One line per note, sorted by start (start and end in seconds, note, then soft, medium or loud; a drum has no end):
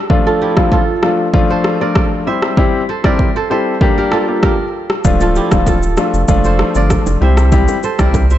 0.00 1.18 D4 medium
0.00 0.41 G4 medium
0.00 0.33 A#4 medium
0.00 0.14 D5 medium
0.10 0.53 F3 medium
0.10 0.53 A3 medium
0.10 0.53 D4 medium
0.10 0.53 F4 loud
0.10 kick loud
0.27 0.48 F4 medium
0.27 0.72 A4 medium
0.42 0.79 E4 medium
0.42 1.83 G4 medium
0.57 0.80 F3 medium
0.57 0.80 A3 medium
0.57 0.80 D4 medium
0.57 0.80 F4 medium
0.57 kick medium
0.57 cross-stick medium
0.72 2.25 F4 medium
0.72 1.51 A4 medium
0.72 kick medium
1.02 1.26 F3 medium
1.02 1.26 A3 medium
1.02 1.26 D4 medium
1.02 1.26 F4 medium
1.02 cross-stick medium
1.33 1.77 F3 medium
1.33 1.77 A3 medium
1.33 1.77 D4 medium
1.33 1.77 F4 loud
1.33 kick loud
1.50 1.88 A4 medium
1.50 2.28 C5 medium
1.64 cross-stick medium
1.80 2.23 F3 medium
1.80 2.23 A3 medium
1.80 2.23 D4 medium
1.80 2.23 F4 medium
1.80 2.96 A#4 medium
1.80 2.92 D5 medium
1.95 kick medium
1.95 cross-stick loud
2.26 2.55 G3 medium
2.26 2.55 C4 medium
2.26 2.55 E4 medium
2.26 2.55 G4 medium
2.26 2.89 C5 medium
2.26 3.31 E5 medium
2.42 cross-stick medium
2.57 2.81 G3 medium
2.57 2.81 C4 medium
2.57 2.81 E4 medium
2.57 2.81 G4 loud
2.57 kick loud
2.89 3.12 A4 medium
2.89 3.36 C5 medium
3.04 3.27 G3 medium
3.04 3.27 C4 medium
3.04 3.27 E4 medium
3.04 3.27 G4 medium
3.04 3.43 A#4 medium
3.04 4.16 D5 medium
3.04 kick medium
3.04 cross-stick medium
3.19 kick medium
3.36 3.51 A4 medium
3.36 3.50 C5 medium
3.50 3.74 G3 medium
3.50 3.74 C4 medium
3.50 3.74 E4 medium
3.50 3.74 G4 medium
3.50 4.04 A4 medium
3.50 4.70 C5 medium
3.81 4.24 G3 medium
3.81 4.24 A#3 medium
3.81 4.24 D4 medium
3.81 4.24 G4 loud
3.81 kick loud
3.98 4.44 G4 medium
3.98 4.19 A#4 medium
4.12 5.22 F4 medium
4.12 4.50 A4 medium
4.12 cross-stick medium
4.28 4.51 G3 medium
4.28 4.51 A#3 medium
4.28 4.51 D4 medium
4.28 4.51 G4 medium
4.43 5.36 G4 medium
4.43 5.28 A#4 medium
4.43 kick medium
4.43 cross-stick medium
4.90 cross-stick medium
5.04 5.40 D1 loud
5.04 5.48 F3 medium
5.04 5.48 A3 medium
5.04 5.48 D4 medium
5.04 5.48 F4 medium
5.04 kick loud
5.04 low conga medium
5.04 shaker medium
5.21 5.43 F4 medium
5.21 5.67 A4 medium
5.21 high bongo medium
5.21 shaker medium
5.36 5.74 E4 medium
5.36 6.78 G4 medium
5.36 shaker medium
5.51 5.98 D1 medium
5.51 5.74 F3 medium
5.51 5.75 A3 medium
5.51 5.75 D4 medium
5.51 5.75 F4 medium
5.51 kick loud
5.51 cross-stick medium
5.51 low bongo medium
5.51 shaker soft
5.67 7.20 F4 medium
5.67 6.46 A4 medium
5.67 kick medium
5.67 high bongo medium
5.67 shaker medium
5.83 shaker medium
5.97 6.21 F3 medium
5.97 6.21 A3 medium
5.97 6.21 D4 medium
5.97 6.21 F4 medium
5.97 cross-stick medium
5.97 shaker medium
6.14 6.25 F1 medium
6.14 shaker medium
6.28 6.63 F1 loud
6.28 6.71 F3 medium
6.28 6.72 A3 medium
6.28 6.72 D4 medium
6.28 6.72 F4 loud
6.28 kick loud
6.28 low conga medium
6.28 shaker medium
6.44 6.83 A4 medium
6.44 7.22 C5 medium
6.44 shaker soft
6.59 cross-stick medium
6.59 low bongo medium
6.75 6.98 G1 medium
6.75 7.18 F3 medium
6.75 7.18 A3 medium
6.75 7.18 D4 medium
6.75 7.18 F4 medium
6.75 7.91 A#4 medium
6.75 7.87 D5 medium
6.75 shaker medium
6.90 kick medium
6.90 cross-stick medium
6.90 high bongo medium
6.90 shaker medium
7.06 7.17 F1 medium
7.06 low bongo medium
7.06 shaker medium
7.21 7.67 C2 loud
7.21 7.50 G3 medium
7.21 7.50 C4 medium
7.21 7.50 E4 medium
7.21 7.50 G4 medium
7.21 7.83 C5 medium
7.21 8.25 E5 medium
7.21 high bongo soft
7.21 low conga medium
7.37 cross-stick medium
7.37 shaker medium
7.52 7.76 G3 medium
7.52 7.76 C4 medium
7.52 7.76 E4 medium
7.52 7.76 G4 loud
7.52 kick loud
7.52 low conga medium
7.52 shaker medium
7.68 high bongo medium
7.68 shaker soft
7.83 8.07 A4 soft
7.83 8.31 C5 medium
7.83 shaker soft
7.99 8.38 C2 medium
7.99 8.22 G3 medium
7.99 8.22 C4 medium
7.99 8.22 E4 medium
7.99 8.22 G4 medium
7.99 8.38 A#4 medium
7.99 8.38 D5 medium
7.99 kick medium
7.99 cross-stick medium
7.99 low bongo medium
7.99 shaker soft
8.14 kick medium
8.14 high bongo medium
8.14 shaker medium
8.30 8.38 C5 medium
8.30 8.38 E5 medium
8.30 shaker medium